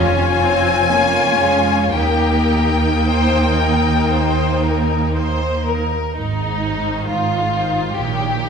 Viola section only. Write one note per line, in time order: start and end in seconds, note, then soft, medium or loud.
0.00 0.43 C#4 medium
0.00 0.88 F4 medium
0.42 0.89 C4 medium
0.90 1.40 A#3 medium
0.90 1.94 C#4 medium
1.40 1.92 G#3 medium
1.94 5.92 A#3 medium
1.94 5.91 D#4 medium
6.63 7.51 D#3 soft
6.63 7.51 D#4 soft
7.53 7.95 D#3 soft
7.53 7.95 D#4 soft
7.96 8.38 D#3 soft
7.96 8.38 D#4 soft
8.39 8.49 D#3 medium
8.39 8.49 D#4 soft